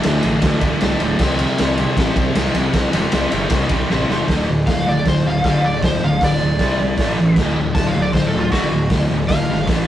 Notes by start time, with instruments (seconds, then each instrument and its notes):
0.03 distorted electric guitar D2 A2 D3, picked electric bass D2, snare, ride
0.23 picked electric bass A1, distorted electric guitar D2 A2 D3, ride
0.42 picked electric bass D2, distorted electric guitar D2 A2, kick, snare, ride
0.46 distorted electric guitar D3
0.61 picked electric bass D1, distorted electric guitar D2 A2 D3, kick, ride
0.81 picked electric bass C2, distorted electric guitar D2 A2 D3, snare, ride
1.00 picked electric bass D1, distorted electric guitar D2 A2 D3, ride
1.19 picked electric bass C2, distorted electric guitar C3 G3, kick, snare, crash
1.23 distorted electric guitar C4
1.39 distorted electric guitar C3 G3, ride
1.43 distorted electric guitar C4
1.58 picked electric bass C2, distorted electric guitar C3 G3 C4, snare, ride
1.77 distorted electric guitar C3 G3 C4, ride
1.97 picked electric bass A1, distorted electric guitar C3 G3 C4, kick, snare, ride
2.16 picked electric bass C2, distorted electric guitar C3 G3 C4, kick, ride
2.35 picked electric bass C2, distorted electric guitar C3 G3 C4, snare, ride
2.55 picked electric bass C2, distorted electric guitar C3 G3 C4, ride
2.73 picked electric bass C2, distorted electric guitar C3 G3 C4, kick, snare, ride
2.93 picked electric bass E1, distorted electric guitar C3 G3 C4, ride
3.12 picked electric bass C2, distorted electric guitar C3 G3 C4, snare, ride
3.31 picked electric bass G1, distorted electric guitar C3 G3 C4, ride
3.50 picked electric bass C2, distorted electric guitar C3 G3 C4, kick, snare, ride
3.69 picked electric bass C2, distorted electric guitar C3 G3 C4, kick, ride
3.89 picked electric bass A1, distorted electric guitar C3 G3 C4, snare
4.08 picked electric bass E1, distorted electric guitar C3 G3 C4, snare
4.28 picked electric bass D1, distorted electric guitar D2 A2 D3, kick, snare, open hi-hat
4.49 picked electric bass D1, distorted electric guitar D2 A2
4.67 picked electric bass D1, distorted electric guitar D2 A2, electric slide guitar F5, kick, snare, open hi-hat
4.87 picked electric bass D1, distorted electric guitar D2 A2, electric slide guitar D5
5.05 picked electric bass D1, distorted electric guitar D2 A2, electric slide guitar C5, kick, snare, open hi-hat
5.25 picked electric bass D1, distorted electric guitar D2 A2, electric slide guitar F5
5.44 picked electric bass F#1, distorted electric guitar D2 A2 D3, electric slide guitar F5, kick, snare, open hi-hat
5.65 picked electric bass D1, distorted electric guitar D2 A2, electric slide guitar D5
5.82 picked electric bass D1, distorted electric guitar D2 A2, electric slide guitar C5, kick, snare, open hi-hat
6.02 picked electric bass D1, distorted electric guitar D2 A2, electric slide guitar F5
6.21 picked electric bass D1, distorted electric guitar D2 A2, electric slide guitar D5, kick, snare, open hi-hat
6.41 picked electric bass D1, distorted electric guitar D2 A2
6.59 picked electric bass C2, distorted electric guitar C3 G3 C4, kick, snare, open hi-hat
6.80 picked electric bass C2, distorted electric guitar C3 G3
6.98 picked electric bass A1, distorted electric guitar A2 E3 A3, kick, snare, open hi-hat
7.19 picked electric bass A1, distorted electric guitar A2 E3
7.36 picked electric bass D1, distorted electric guitar D2 A2 D3, kick, snare, crash
7.57 picked electric bass D1, distorted electric guitar D2 A2
7.75 picked electric bass D1, distorted electric guitar D2 A2, electric slide guitar A5, kick, snare, open hi-hat
7.87 electric slide guitar F5
7.95 picked electric bass D1, distorted electric guitar D2 A2
8.02 electric slide guitar D5
8.13 picked electric bass D1, distorted electric guitar D2 A2, electric slide guitar C5, kick, snare, open hi-hat
8.26 electric slide guitar A4
8.34 picked electric bass D1, distorted electric guitar D2 A2
8.39 electric slide guitar F4
8.52 picked electric bass F#1, distorted electric guitar D2 A2 D3, electric slide guitar F#4, kick, snare, open hi-hat
8.73 picked electric bass D1, distorted electric guitar D2 A2
8.90 picked electric bass D1, distorted electric guitar D2 A2, kick, snare, open hi-hat
9.11 picked electric bass D1, distorted electric guitar D2 A2
9.28 picked electric bass D1, distorted electric guitar D2 A2, electric slide guitar F5, kick, snare, open hi-hat
9.49 picked electric bass G#1, distorted electric guitar D2 A2
9.67 picked electric bass A1, distorted electric guitar A2 E3 A3, kick, snare, open hi-hat